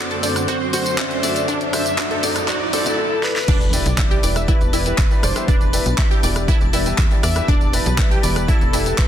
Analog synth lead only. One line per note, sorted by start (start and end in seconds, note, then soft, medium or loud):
0.00 0.20 D5 loud
0.48 0.71 C5 loud
0.73 1.44 C5 loud
1.73 2.20 E5 loud
2.48 2.71 D5 loud
2.73 2.96 D5 loud
2.99 3.25 A4 medium
3.24 3.88 B4 loud
3.86 4.36 D5 loud
4.36 4.42 E5 loud
4.48 5.25 B4 loud
5.23 5.50 C5 loud
5.48 6.23 B4 medium
7.23 7.50 E5 loud
7.48 7.75 D5 loud
7.73 8.23 B4 loud
8.23 8.50 B4 loud
8.48 9.00 A4 loud
8.98 9.08 B4 loud